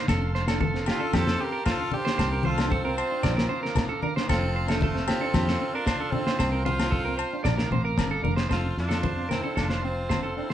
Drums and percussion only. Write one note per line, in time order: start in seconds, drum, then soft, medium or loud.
0.08 kick medium
0.08 snare medium
0.08 low agogo medium
0.35 snare soft
0.48 snare medium
0.48 low agogo medium
0.61 kick medium
0.61 high conga medium
0.75 snare soft
0.86 snare medium
0.86 low agogo medium
1.13 kick medium
1.13 snare medium
1.13 muted conga soft
1.13 high conga medium
1.13 low agogo medium
1.27 snare medium
1.38 muted conga soft
1.66 kick medium
1.66 snare medium
1.66 low agogo medium
1.92 muted conga soft
1.92 high conga medium
2.07 snare medium
2.18 kick medium
2.18 snare medium
2.18 muted conga soft
2.18 low agogo medium
2.43 high conga medium
2.58 snare medium
2.58 low agogo medium
2.72 kick medium
2.98 low agogo medium
3.23 kick medium
3.23 snare medium
3.23 muted conga soft
3.23 low conga medium
3.23 low agogo medium
3.38 snare medium
3.50 muted conga soft
3.65 snare soft
3.75 kick medium
3.75 snare medium
3.75 high conga medium
3.75 low agogo medium
4.02 muted conga soft
4.02 high conga medium
4.17 snare medium
4.28 kick medium
4.28 snare medium
4.28 muted conga soft
4.28 low agogo medium
4.68 snare medium
4.68 low agogo medium
4.81 kick medium
4.81 high conga medium
4.96 snare soft
5.08 snare medium
5.08 low agogo medium
5.34 kick medium
5.34 snare medium
5.34 muted conga soft
5.34 high conga medium
5.34 low agogo medium
5.48 snare medium
5.60 muted conga soft
5.86 kick loud
5.86 snare medium
5.86 low agogo medium
6.12 muted conga soft
6.12 high conga medium
6.27 snare medium
6.39 kick medium
6.39 snare medium
6.39 muted conga soft
6.39 low agogo medium
6.66 high conga medium
6.80 snare medium
6.80 low agogo medium
6.92 kick medium
7.19 low agogo medium
7.45 kick medium
7.45 snare medium
7.45 muted conga soft
7.45 low conga medium
7.45 low agogo medium
7.58 snare medium
7.72 muted conga soft
7.72 low conga medium
7.98 kick medium
7.98 snare medium
7.98 high conga medium
7.98 low agogo medium
8.25 muted conga soft
8.25 high conga medium
8.37 snare medium
8.51 kick medium
8.51 snare medium
8.51 low agogo medium
8.77 snare soft
8.77 muted conga soft
8.91 snare medium
8.91 low agogo medium
9.03 kick medium
9.03 high conga medium
9.31 snare medium
9.31 muted conga soft
9.31 high conga medium
9.31 low agogo medium
9.57 kick medium
9.57 snare medium
9.57 muted conga soft
9.57 low agogo medium
9.70 snare medium
10.10 kick medium
10.10 snare medium
10.10 high conga medium
10.10 low agogo medium
10.50 snare medium